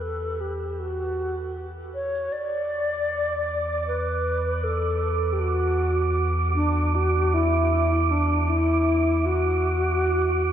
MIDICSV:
0, 0, Header, 1, 4, 480
1, 0, Start_track
1, 0, Tempo, 769231
1, 12, Time_signature, 3, 2, 24, 8
1, 6568, End_track
2, 0, Start_track
2, 0, Title_t, "Synth texture"
2, 0, Program_c, 0, 99
2, 1452, Note_on_c, 0, 86, 77
2, 6568, Note_off_c, 0, 86, 0
2, 6568, End_track
3, 0, Start_track
3, 0, Title_t, "Alto flute"
3, 0, Program_c, 1, 73
3, 8, Note_on_c, 1, 69, 87
3, 253, Note_on_c, 1, 67, 73
3, 263, Note_off_c, 1, 69, 0
3, 494, Note_on_c, 1, 66, 80
3, 503, Note_off_c, 1, 67, 0
3, 1045, Note_off_c, 1, 66, 0
3, 1213, Note_on_c, 1, 73, 90
3, 1450, Note_on_c, 1, 74, 105
3, 1459, Note_off_c, 1, 73, 0
3, 2411, Note_off_c, 1, 74, 0
3, 2419, Note_on_c, 1, 71, 86
3, 2894, Note_on_c, 1, 69, 89
3, 2903, Note_off_c, 1, 71, 0
3, 3325, Note_on_c, 1, 67, 53
3, 3335, Note_off_c, 1, 69, 0
3, 3369, Note_on_c, 1, 66, 79
3, 3378, Note_off_c, 1, 67, 0
3, 3922, Note_off_c, 1, 66, 0
3, 4088, Note_on_c, 1, 62, 79
3, 4337, Note_on_c, 1, 66, 89
3, 4346, Note_off_c, 1, 62, 0
3, 4579, Note_on_c, 1, 64, 85
3, 4588, Note_off_c, 1, 66, 0
3, 5059, Note_on_c, 1, 62, 70
3, 5069, Note_off_c, 1, 64, 0
3, 5296, Note_on_c, 1, 64, 81
3, 5305, Note_off_c, 1, 62, 0
3, 5776, Note_on_c, 1, 66, 80
3, 5786, Note_off_c, 1, 64, 0
3, 6568, Note_off_c, 1, 66, 0
3, 6568, End_track
4, 0, Start_track
4, 0, Title_t, "Sub bass"
4, 0, Program_c, 2, 38
4, 0, Note_on_c, 2, 40, 84
4, 1427, Note_off_c, 2, 40, 0
4, 1452, Note_on_c, 2, 40, 85
4, 6568, Note_off_c, 2, 40, 0
4, 6568, End_track
0, 0, End_of_file